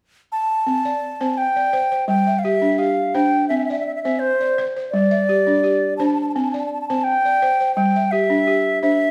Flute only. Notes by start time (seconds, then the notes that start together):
0.32 A5
1.38 G5
2.08 G5
2.39 F5
2.44 E5
2.78 F5
3.15 G5
3.49 E5
3.58 E5
3.65 E5
3.72 E5
3.80 E5
3.86 E5
3.95 E5
4.03 E5
4.19 C5
4.90 D5
5.97 A5
6.06 A5
6.14 A5
6.21 A5
6.29 A5
6.35 A5
6.43 A5
6.51 A5
6.59 A5
6.66 A5
6.73 A5
6.81 A5
6.88 A5
7.04 G5
7.75 G5
8.11 E5
8.82 E5